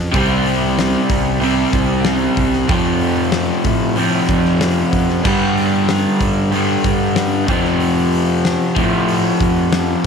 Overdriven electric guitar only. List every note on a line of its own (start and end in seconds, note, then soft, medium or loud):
0.12 1.39 C3 medium
0.12 1.41 G3 medium
0.16 1.43 C4 medium
1.40 2.67 C3 medium
1.40 2.68 G3 medium
1.40 2.69 C4 medium
2.68 3.95 F2 loud
2.68 3.96 C3 medium
2.72 3.97 F3 loud
3.96 5.23 F2 medium
3.96 5.23 C3 medium
3.96 5.24 F3 medium
5.24 6.50 G2 loud
5.24 6.51 D3 medium
5.24 6.52 G3 loud
6.51 7.46 G2 medium
6.51 7.47 D3 medium
6.51 7.48 G3 medium
7.47 8.74 F2 medium
7.47 8.75 C3 medium
7.51 8.74 F3 medium
8.75 10.03 C3 medium
8.75 10.02 F3 medium
8.80 10.04 F2 medium